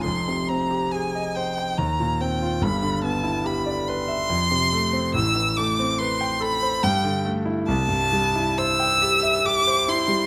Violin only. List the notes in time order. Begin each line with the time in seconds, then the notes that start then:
0.04 C6
0.48 A#5
0.91 G#5
1.35 G5
1.77 A#5
2.21 G5
2.62 B5
3.04 A5
3.46 B5
3.88 C6
5.15 E6
5.57 D6
5.98 C6
6.42 B5
6.83 G5
7.68 A5
8.58 E6
9.45 D6
9.89 C6